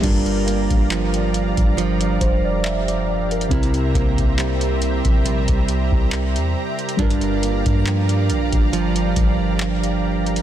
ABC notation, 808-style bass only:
X:1
M:4/4
L:1/16
Q:"Swing 16ths" 1/4=69
K:Gdor
V:1 name="808-style bass" clef=bass
G,,,3 G,,,4 G,,,3 F,,,6 | C,,2 C,,4- C,, B,,,2 C,,2 C,,2 E,, z2 | G,,,3 G,,3 B,,, G,,,3 G,,,6 |]